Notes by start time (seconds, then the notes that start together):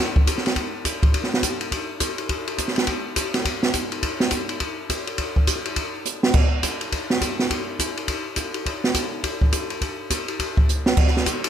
0.16 kick
0.27 kick, hi-hat pedal, ride
0.38 snare
0.46 snare, ride
0.56 kick, ride
0.85 kick, hi-hat pedal, ride
1.03 kick, ride
1.14 kick, ride
1.24 snare
1.34 snare
1.43 kick, hi-hat pedal, ride
1.61 ride
1.72 kick, ride
2.00 kick, hi-hat pedal, ride
2.18 ride
2.29 kick, ride
2.47 ride
2.58 kick, hi-hat pedal, ride
2.68 snare
2.76 snare, ride
2.87 kick, ride
3.16 kick, hi-hat pedal, ride
3.34 snare, ride
3.45 kick, ride
3.63 snare
3.74 kick, hi-hat pedal, ride
3.92 ride
4.03 kick, ride
4.20 snare
4.31 kick, hi-hat pedal, ride
4.49 ride
4.60 kick, ride
4.90 kick, hi-hat pedal, ride
5.07 ride
5.18 kick, ride
5.36 kick
5.47 kick, hi-hat pedal, ride
5.65 ride
5.76 kick, ride
6.05 hi-hat pedal
6.23 snare
6.34 kick, crash
6.63 kick, hi-hat pedal, ride
6.81 ride
6.92 kick, ride
7.10 snare
7.21 kick, hi-hat pedal, ride
7.39 snare
7.50 kick, ride
7.79 kick, hi-hat pedal, ride
7.97 ride
8.08 kick, ride
8.36 kick, hi-hat pedal, ride
8.54 ride
8.66 kick, ride
8.84 snare
8.94 kick, hi-hat pedal, ride
9.24 kick, ride
9.41 kick
9.52 kick, hi-hat pedal, ride
9.70 ride
9.81 kick, ride
10.10 kick, hi-hat pedal, ride
10.28 ride
10.39 kick, ride
10.57 kick
10.69 hi-hat pedal
10.86 snare
10.97 kick, crash
11.07 snare
11.17 snare
11.26 kick, hi-hat pedal, ride
11.44 ride